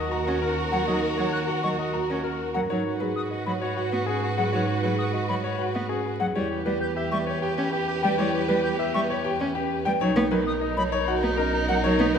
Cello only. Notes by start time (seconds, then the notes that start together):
0.27 C#4
0.72 F#3
0.88 F#3
1.18 F#3
1.64 F#3
2.10 C#4
2.55 F#3
2.70 F#3
3.01 F#3
3.46 F#3
3.92 B3
4.38 F#3
4.53 F#3
4.84 F#3
5.29 F#3
5.75 B3
6.20 F#3
6.36 G3
6.66 G3
7.12 G3
7.58 C#4
8.04 G3
8.18 G3
8.49 G3
8.95 G3
9.40 C#4
9.86 G3
10.00 F#3
10.16 B3
10.31 F#3
10.77 F#3
11.23 B3
11.69 F#3
11.84 F#3
11.99 B3
12.15 F#3